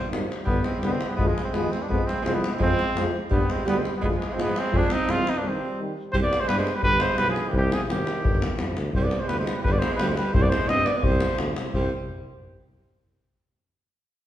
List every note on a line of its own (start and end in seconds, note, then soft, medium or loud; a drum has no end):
0.11 0.31 G#1 medium
0.11 0.25 D#3 medium
0.11 0.26 G3 medium
0.11 davul high medium
0.22 davul high soft
0.32 davul high medium
0.40 davul high soft
0.44 0.57 G1 loud
0.44 0.62 D3 medium
0.44 0.65 G3 medium
0.44 0.66 B3 loud
0.44 davul low medium
0.49 0.63 B3 medium
0.57 davul high soft
0.63 0.81 G#3 medium
0.63 0.85 C4 medium
0.63 davul high medium
0.74 davul high soft
0.79 1.02 C2 medium
0.79 0.97 D3 medium
0.79 0.90 G3 medium
0.79 davul high medium
0.83 0.97 B3 medium
0.83 0.93 B3 medium
0.89 1.10 G#3 medium
0.89 1.11 C4 medium
1.01 davul high medium
1.08 1.15 G3 medium
1.08 1.15 B3 medium
1.08 davul high soft
1.16 1.28 D2 medium
1.16 1.32 F3 medium
1.16 1.29 G#3 medium
1.16 1.33 G#3 medium
1.16 1.29 B3 loud
1.16 davul low medium
1.27 1.43 F3 medium
1.27 1.43 G#3 medium
1.27 davul high soft
1.38 davul high medium
1.44 1.51 G#3 medium
1.44 1.56 C4 medium
1.44 davul high soft
1.51 1.73 D#2 medium
1.51 1.67 F3 medium
1.51 1.71 G#3 medium
1.51 1.68 G#3 medium
1.51 1.73 B3 medium
1.51 davul high medium
1.71 1.81 G#3 medium
1.71 1.83 C4 medium
1.71 davul high medium
1.80 1.87 B3 medium
1.80 1.89 D4 medium
1.80 davul high soft
1.88 1.99 F2 loud
1.88 2.03 F3 medium
1.88 2.05 G#3 medium
1.88 2.04 G#3 medium
1.88 2.07 B3 medium
1.88 davul low medium
2.01 davul high soft
2.05 2.22 G#3 medium
2.05 2.24 C4 medium
2.05 davul high medium
2.18 davul high soft
2.22 2.43 C2 medium
2.22 2.39 F3 medium
2.22 2.35 G#3 medium
2.22 2.40 G#3 medium
2.22 2.36 C4 loud
2.22 davul high medium
2.33 2.51 G3 medium
2.33 2.55 B3 medium
2.44 davul high medium
2.50 2.58 G#3 medium
2.50 2.61 C4 medium
2.50 davul high soft
2.59 2.69 F2 loud
2.59 2.74 F3 medium
2.59 3.09 G#3 medium
2.59 2.74 G#3 medium
2.59 3.10 C4 loud
2.59 davul low medium
2.70 davul high soft
2.79 davul high medium
2.95 3.14 F2 medium
2.95 3.11 F3 medium
2.95 3.10 G#3 medium
2.95 davul high medium
3.30 3.40 G2 loud
3.30 3.44 G3 medium
3.30 3.50 G3 medium
3.30 3.52 B3 medium
3.30 3.46 B3 medium
3.30 davul low loud
3.41 davul high soft
3.48 3.64 G#3 medium
3.48 3.67 C4 medium
3.48 davul high medium
3.59 davul high soft
3.65 3.86 D2 medium
3.65 3.76 G3 medium
3.65 3.80 G3 medium
3.65 3.80 B3 medium
3.65 3.79 B3 loud
3.65 davul high medium
3.75 3.91 G#3 medium
3.75 3.94 C4 medium
3.85 davul high medium
3.92 4.00 G3 medium
3.92 davul high soft
3.97 4.03 B3 medium
4.01 4.11 D2 medium
4.01 4.15 F3 medium
4.01 4.15 G#3 medium
4.01 4.05 G#3 medium
4.01 4.07 B3 loud
4.01 davul low medium
4.09 4.30 F3 medium
4.13 4.34 G#3 medium
4.13 davul high soft
4.22 davul high medium
4.28 4.37 G#3 medium
4.28 davul high soft
4.33 4.56 G#2 medium
4.33 4.49 F3 medium
4.33 4.51 G#3 medium
4.33 4.43 C4 medium
4.37 4.55 G#3 medium
4.37 davul high medium
4.42 4.60 B3 loud
4.55 4.72 G#3 medium
4.55 4.78 C4 loud
4.55 davul high medium
4.72 4.82 F2 loud
4.72 4.87 F3 medium
4.72 4.91 G#3 medium
4.72 4.86 G#3 medium
4.72 davul low medium
4.77 4.94 D4 loud
4.83 davul high soft
4.89 5.08 C4 medium
4.89 5.12 D#4 loud
4.89 davul high medium
5.01 davul high soft
5.07 5.27 C2 medium
5.07 5.23 F3 medium
5.07 5.22 G#3 medium
5.07 5.27 C4 medium
5.07 5.31 F4 loud
5.07 davul high medium
5.27 5.38 C4 medium
5.27 5.39 D#4 loud
5.27 davul high medium
5.36 5.46 B3 medium
5.36 5.49 D4 medium
5.36 davul high soft
5.44 5.58 D#3 medium
5.44 5.58 G3 medium
5.44 5.79 G3 medium
5.48 5.81 C4 medium
5.78 5.92 D#3 medium
5.78 5.93 G3 medium
6.12 6.33 C2 medium
6.12 6.18 G3 medium
6.12 6.16 C5 loud
6.12 davul low medium
6.23 6.43 B3 medium
6.23 6.42 D5 loud
6.23 davul high soft
6.33 davul high medium
6.40 6.51 G#3 medium
6.40 6.50 C5 loud
6.40 davul high soft
6.48 6.68 G2 medium
6.48 6.58 G3 loud
6.48 6.57 B4 loud
6.48 davul high medium
6.59 6.75 G#3 medium
6.59 6.77 C5 medium
6.67 davul high medium
6.74 6.83 G3 medium
6.74 6.83 B4 medium
6.83 7.03 G1 loud
6.83 7.01 G3 medium
6.83 7.02 B4 loud
6.83 davul low medium
6.93 davul high soft
6.99 7.19 G#3 medium
6.99 7.20 C5 loud
6.99 davul high medium
7.10 davul high soft
7.18 7.37 B1 medium
7.18 7.27 G3 medium
7.18 7.28 B4 loud
7.18 davul high medium
7.28 7.47 F3 medium
7.28 7.51 G#4 medium
7.36 davul high medium
7.46 7.54 D#3 medium
7.46 7.56 G4 medium
7.53 7.72 C2 loud
7.53 7.75 D#3 medium
7.53 davul low medium
7.57 7.75 G4 loud
7.72 7.83 F3 medium
7.72 7.84 G#4 medium
7.72 davul high medium
7.82 7.93 F3 soft
7.82 7.92 G#4 medium
7.82 davul high soft
7.89 8.08 G#1 medium
7.89 8.60 D#3 medium
7.89 8.60 G4 medium
7.89 davul high medium
8.07 davul high medium
8.23 8.42 G1 loud
8.23 davul low loud
8.35 davul high soft
8.42 davul high medium
8.51 davul high soft
8.58 8.74 F2 medium
8.58 davul high medium
8.70 davul high soft
8.77 8.92 D2 medium
8.77 davul high medium
8.93 9.12 C2 loud
8.93 9.06 G3 medium
8.93 9.04 C5 medium
8.93 davul low medium
9.03 9.23 B3 medium
9.03 9.22 D5 medium
9.03 davul high soft
9.11 davul high medium
9.20 9.29 G#3 medium
9.20 9.30 C5 medium
9.20 davul high soft
9.28 9.48 D2 medium
9.28 9.38 G3 medium
9.28 9.38 B4 medium
9.28 davul high medium
9.39 9.57 G#3 medium
9.39 9.56 C5 medium
9.47 davul high medium
9.54 9.64 G3 medium
9.54 9.62 B4 medium
9.62 9.83 G1 loud
9.62 9.73 B4 medium
9.62 davul low medium
9.67 9.76 G3 medium
9.72 9.86 B3 medium
9.72 9.80 D5 medium
9.72 davul high soft
9.79 9.94 C5 medium
9.79 davul high medium
9.84 10.01 G#3 medium
9.93 10.05 B4 medium
9.93 davul high soft
9.99 10.19 D2 medium
9.99 10.09 G3 loud
9.99 davul high medium
10.08 10.20 G#3 medium
10.08 10.18 C5 medium
10.17 10.33 G3 medium
10.17 10.35 B4 medium
10.17 davul high medium
10.33 10.53 C2 loud
10.33 10.44 G3 medium
10.33 10.44 C5 loud
10.33 davul low loud
10.42 10.53 B3 medium
10.42 10.51 D5 loud
10.42 davul high soft
10.50 10.71 G#3 medium
10.50 10.70 C5 loud
10.50 davul high medium
10.68 10.88 G2 medium
10.68 10.86 C4 medium
10.68 10.87 D#5 loud
10.68 davul high medium
10.85 10.95 B3 medium
10.85 10.98 D5 medium
10.85 davul high medium
10.96 11.05 B3 medium
10.96 11.06 D5 medium
11.03 11.23 C2 loud
11.03 11.39 G3 medium
11.03 11.39 C5 loud
11.03 davul low medium
11.12 davul high soft
11.21 davul high medium
11.30 davul high soft
11.38 11.54 D2 medium
11.38 davul high medium
11.56 11.72 C2 medium
11.56 davul high medium
11.67 davul high soft
11.73 11.90 C2 loud
11.73 11.91 G3 medium
11.73 11.90 C5 medium
11.73 davul low medium